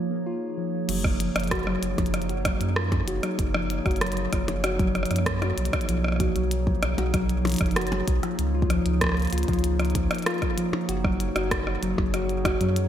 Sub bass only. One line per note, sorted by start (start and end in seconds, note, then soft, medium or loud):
0.89 1.31 F#1 medium
1.36 1.78 F#1 loud
1.83 1.95 F#1 loud
1.98 2.56 F#1 medium
2.61 3.03 F#2 loud
3.08 3.20 F#1 loud
3.39 3.81 F#1 loud
3.86 4.28 F#1 loud
4.33 4.45 F#1 loud
4.48 5.06 F#1 medium
5.11 5.53 F#2 loud
5.57 5.70 B1 loud
5.89 6.31 B1 loud
6.36 6.78 B1 loud
6.83 6.95 B1 medium
6.98 7.56 B1 medium
7.61 8.03 F#1 loud
8.08 8.20 B1 loud
8.39 8.81 C#2 loud
8.86 9.28 C#2 loud
9.33 9.45 C#2 loud
9.48 9.94 C#2 medium
9.95 10.08 C#2 loud
10.89 11.31 F#1 loud
11.36 11.78 F#1 loud
11.83 11.95 F#1 loud
11.98 12.56 F#1 medium
12.61 12.88 F#2 loud